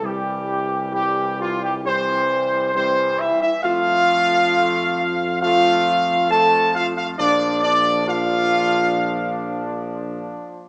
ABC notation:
X:1
M:4/4
L:1/16
Q:1/4=67
K:C
V:1 name="Trumpet section"
G4 G2 F G c4 c2 e e | f8 f4 a2 f f | d2 d2 f8 z4 |]
V:2 name="French horn section"
G,4 G,2 F, G, C4 C2 E E | F8 F4 A2 F F | D2 D2 F8 z4 |]
V:3 name="Trombone section" clef=bass
[E,G,]4 [E,G,]4 [E,G,]4 [E,G,]4 | [F,A,]8 [F,A,]4 [F,A,]4 | [F,D]4 [F,D]12 |]
V:4 name="Tuba" clef=bass
C,,12- C,,2 z2 | F,,16 | _B,,,12- B,,,2 z2 |]